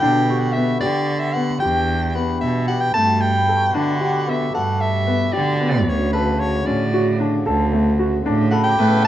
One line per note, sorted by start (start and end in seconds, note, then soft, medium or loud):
0.00 0.71 B2 medium
0.00 1.59 D3 medium
0.00 1.60 B3 medium
0.00 0.19 D4 medium
0.00 2.92 G4 medium
0.00 0.41 G5 medium
0.29 0.45 G4 medium
0.29 0.89 C#6 medium
0.40 0.54 F#5 medium
0.53 0.72 B3 medium
0.53 0.80 E5 medium
0.81 1.50 D3 medium
0.81 1.15 G4 medium
0.81 1.21 D5 medium
1.20 1.35 E5 medium
1.33 1.52 B3 medium
1.33 1.60 F#5 medium
1.60 2.30 E2 medium
1.60 2.93 E3 medium
1.60 2.93 D4 medium
1.60 1.94 G4 medium
1.60 2.17 G5 medium
2.15 2.48 B3 medium
2.15 2.40 F#5 medium
2.15 2.75 B5 soft
2.41 2.87 B2 medium
2.41 2.66 E5 medium
2.68 2.85 G4 medium
2.68 2.82 F#5 medium
2.80 2.94 G5 medium
2.94 3.63 G2 medium
2.94 5.85 B2 medium
2.94 3.27 A3 medium
2.94 5.84 A3 medium
2.94 5.84 G4 medium
2.94 3.22 A5 medium
3.21 3.76 G5 medium
3.21 3.81 G5 soft
3.38 3.96 B5 soft
3.49 3.65 A4 medium
3.57 3.94 C#6 soft
3.74 4.42 D3 medium
3.74 3.91 D4 medium
3.74 4.31 F#5 medium
3.74 4.34 A5 medium
3.95 4.51 C#6 soft
4.01 4.17 G4 medium
4.13 4.66 D6 soft
4.27 4.44 B3 medium
4.27 4.54 E5 medium
4.54 5.22 G2 medium
4.54 4.87 A4 medium
4.54 4.82 F#5 medium
4.81 5.35 E5 medium
5.07 5.23 B3 medium
5.33 5.88 D3 medium
5.33 5.50 G4 medium
5.33 5.90 D5 medium
5.61 5.93 B3 medium
5.86 6.55 D2 medium
5.86 8.76 C#3 medium
5.86 8.76 D3 medium
5.86 8.76 F#4 medium
5.86 6.12 C#5 medium
6.13 6.46 A4 medium
6.13 6.41 B4 medium
6.40 6.67 C#5 medium
6.66 7.35 A2 medium
6.66 6.83 C#4 medium
6.66 7.19 D5 medium
6.94 7.10 F#4 medium
7.20 7.36 D4 medium
7.46 8.14 D2 medium
7.46 7.62 A4 medium
7.73 7.89 A3 medium
7.99 8.16 F#4 medium
8.26 8.71 A2 medium
8.26 8.42 D4 medium
8.51 8.69 A4 medium
8.51 8.63 F#5 medium
8.51 9.02 B5 medium
8.64 9.02 G5 medium
8.69 9.07 D6 soft
8.78 9.07 A2 medium
8.78 9.07 C#3 medium
8.78 9.07 A3 medium
8.78 9.07 B3 medium
8.78 9.07 A4 medium
8.78 9.07 B4 loud
8.88 9.07 E6 soft